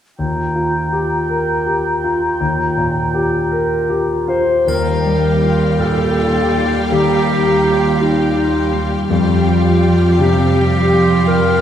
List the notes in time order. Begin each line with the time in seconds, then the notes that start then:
0.18 D#2 F4 G5 A#5
0.55 F4
0.93 G4
1.29 A#4
1.66 G4
2.04 F4
2.40 D#2
2.77 A#2
3.14 G4
3.52 A#4
3.90 G4
4.28 F4 C5
4.66 D#2 D#3 G3 G4 A#4 F5 G5, triangle
5.05 G3
5.43 F4
5.79 A#2 G4 A4
6.17 F4
6.54 G3
6.91 D#3 G4
7.29 D#4
7.64 F4
8.01 D#4 G4
8.37 F4
8.73 G3
9.10 F2 F3 G3 G4 F5 G5
9.46 F4
9.83 G4
10.19 C3 G4 F5
10.56 G4
10.92 F4
11.27 F3 A#4